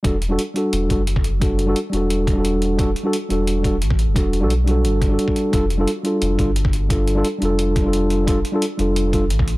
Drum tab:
HH |x-x-x-x-x-x-x-x-|x-x-x-x-x-x-x-x-|x-x-x-x-x-x-x-x-|x-x-x-x-x-x-x-x-|
BD |o---------o--o--|o---------o-----|o---------o--o--|o---------o--o--|

HH |x-x-x-x-x-x-x-x-|x-x-x-x-x-x-x-x-|x-x-x-x-x-x-x-x-|
BD |o---------o--o--|o---------o-----|o---------o--o--|